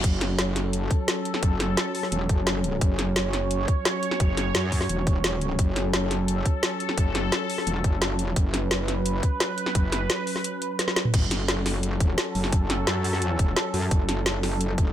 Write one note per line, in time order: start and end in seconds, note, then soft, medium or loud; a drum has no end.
0.00 0.37 F#1 loud
0.00 11.10 F#3 medium
0.00 11.10 C#4 medium
0.00 kick loud
0.00 closed hi-hat loud
0.00 crash medium
0.04 2.80 A4 loud
0.21 snare medium
0.21 closed hi-hat medium
0.39 0.89 F#1 loud
0.39 snare loud
0.39 closed hi-hat loud
0.56 snare medium
0.56 closed hi-hat medium
0.73 closed hi-hat medium
0.91 kick loud
0.91 closed hi-hat medium
1.08 snare loud
1.08 closed hi-hat loud
1.25 closed hi-hat medium
1.34 snare medium
1.43 1.76 F#1 loud
1.43 kick loud
1.43 closed hi-hat loud
1.60 snare medium
1.60 closed hi-hat medium
1.77 snare loud
1.77 closed hi-hat medium
1.95 open hi-hat medium
2.03 snare soft
2.12 2.28 E1 loud
2.12 closed hi-hat medium
2.29 2.80 F#1 loud
2.29 kick loud
2.29 closed hi-hat medium
2.47 snare loud
2.47 closed hi-hat medium
2.64 closed hi-hat medium
2.81 3.15 F#1 medium
2.81 5.58 C#5 loud
2.81 kick loud
2.81 closed hi-hat medium
2.99 snare medium
2.99 closed hi-hat medium
3.16 3.67 F#1 loud
3.16 snare loud
3.16 closed hi-hat medium
3.33 snare soft
3.33 closed hi-hat medium
3.51 closed hi-hat medium
3.68 kick loud
3.68 closed hi-hat medium
3.85 snare loud
3.85 closed hi-hat medium
4.03 closed hi-hat medium
4.11 snare medium
4.20 4.53 F#1 medium
4.20 kick loud
4.20 closed hi-hat medium
4.37 snare medium
4.37 closed hi-hat medium
4.55 4.88 F#2 loud
4.55 snare loud
4.55 closed hi-hat medium
4.72 kick medium
4.72 open hi-hat medium
4.81 snare soft
4.89 5.57 E1 loud
4.89 closed hi-hat medium
5.07 kick loud
5.07 closed hi-hat medium
5.24 snare loud
5.24 closed hi-hat medium
5.41 closed hi-hat medium
5.59 5.92 F#1 loud
5.59 8.35 A4 loud
5.59 kick loud
5.59 closed hi-hat medium
5.76 snare medium
5.76 closed hi-hat medium
5.93 6.44 F#1 medium
5.93 snare loud
5.93 closed hi-hat medium
6.11 snare soft
6.11 closed hi-hat medium
6.28 closed hi-hat medium
6.46 kick loud
6.46 closed hi-hat medium
6.63 snare loud
6.63 closed hi-hat medium
6.80 closed hi-hat medium
6.89 snare medium
6.98 7.31 F#1 loud
6.98 kick loud
6.98 closed hi-hat loud
7.15 snare medium
7.15 closed hi-hat medium
7.32 snare loud
7.32 closed hi-hat medium
7.50 open hi-hat medium
7.58 snare soft
7.67 7.83 E1 loud
7.67 closed hi-hat medium
7.84 8.35 F#1 loud
7.84 kick loud
7.84 closed hi-hat medium
8.02 snare loud
8.02 closed hi-hat loud
8.19 closed hi-hat medium
8.36 8.70 F#1 loud
8.36 11.13 B4 loud
8.36 kick loud
8.36 closed hi-hat loud
8.54 snare medium
8.54 closed hi-hat medium
8.71 9.22 F#1 loud
8.71 snare loud
8.71 closed hi-hat medium
8.88 snare soft
8.88 closed hi-hat medium
9.06 closed hi-hat medium
9.23 kick loud
9.23 closed hi-hat medium
9.40 snare loud
9.40 closed hi-hat loud
9.58 closed hi-hat medium
9.66 snare medium
9.75 10.08 F#1 loud
9.75 kick loud
9.75 closed hi-hat loud
9.92 snare medium
9.92 closed hi-hat medium
10.10 snare loud
10.10 closed hi-hat loud
10.27 open hi-hat medium
10.36 snare soft
10.44 closed hi-hat medium
10.62 closed hi-hat medium
10.79 snare medium
10.79 closed hi-hat loud
10.88 snare medium
10.96 snare medium
10.96 closed hi-hat medium
11.05 mid tom medium
11.14 11.99 F#1 medium
11.14 14.93 F#3 medium
11.14 14.93 C#4 medium
11.14 14.93 A4 medium
11.14 kick loud
11.14 closed hi-hat loud
11.14 crash loud
11.31 snare medium
11.31 closed hi-hat medium
11.48 snare loud
11.48 closed hi-hat medium
11.66 snare soft
11.66 open hi-hat medium
11.83 closed hi-hat medium
12.00 12.16 E1 loud
12.00 kick loud
12.00 closed hi-hat medium
12.18 snare loud
12.18 closed hi-hat loud
12.35 12.86 F#1 loud
12.35 open hi-hat medium
12.44 snare medium
12.52 kick loud
12.52 closed hi-hat loud
12.70 snare medium
12.70 closed hi-hat medium
12.87 13.38 F#2 medium
12.87 snare loud
12.87 closed hi-hat medium
13.04 open hi-hat medium
13.13 snare soft
13.22 closed hi-hat medium
13.39 13.55 E1 loud
13.39 kick loud
13.39 closed hi-hat medium
13.56 snare loud
13.56 closed hi-hat loud
13.74 13.90 F#2 loud
13.74 open hi-hat medium
13.91 14.77 F#1 loud
13.91 kick loud
13.91 closed hi-hat medium
14.09 snare medium
14.09 closed hi-hat medium
14.26 snare loud
14.26 closed hi-hat medium
14.43 snare medium
14.43 open hi-hat medium
14.61 closed hi-hat medium
14.78 14.93 E1 loud
14.78 kick loud
14.78 closed hi-hat medium